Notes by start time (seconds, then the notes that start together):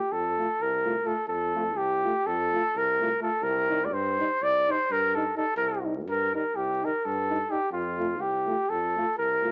Already playing: G4
0.12 F2 A4
0.38 A3 F4
0.61 C2 A#4
0.85 A3 F4
1.04 A3 F4 A4
1.27 F2 A4
1.55 A3 F4
1.76 C2 G4
2.03 A3 F4
2.26 F2 A4
2.52 A3 F4
2.75 C2 A#4
3.00 A3 F4
3.20 A3 F4 A4
3.42 C2 A#4
3.69 G3 D#4
3.85 D5
3.91 G2 C5
4.18 G3 D#4
4.42 C2 D5
4.68 G3 D#4 C5
4.90 G2 A#4
5.14 G3 D#4 A4
5.35 G3 D#4 A4
5.56 C2 A#4
5.84 G3 D#4
6.06 G2 A#4
6.34 G3 D#4 A#4
6.55 C2 G4
6.82 G3 D#4 A#4
7.05 G2 A4
7.29 G3 D#4
7.49 G3 D#4 G4
7.71 F2 F4
7.98 A3 F4
8.21 C2 G4
8.46 A3 F4
8.69 F2 A4
8.95 A3 F4
9.18 C2 A#4
9.42 A3 F4